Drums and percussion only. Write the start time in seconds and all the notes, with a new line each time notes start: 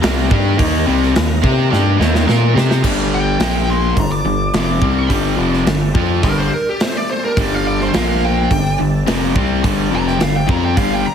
0.03 snare, open hi-hat
0.31 kick
0.59 kick, open hi-hat
1.03 snare
1.16 snare, open hi-hat
1.44 kick
1.73 snare
2.01 snare
2.15 snare
2.29 snare
2.58 snare
2.71 snare
2.84 kick, crash
3.40 snare, open hi-hat
3.97 kick, open hi-hat
4.54 snare, open hi-hat
4.82 kick
5.10 kick, open hi-hat
5.53 snare
5.67 snare, open hi-hat
5.95 kick
6.23 kick, open hi-hat
6.80 snare, open hi-hat
7.37 kick, open hi-hat
7.80 snare
7.94 snare, open hi-hat
8.51 kick, open hi-hat
9.07 snare, open hi-hat
9.36 kick
9.64 kick, open hi-hat
10.07 snare
10.20 snare, open hi-hat
10.49 kick
10.77 kick, open hi-hat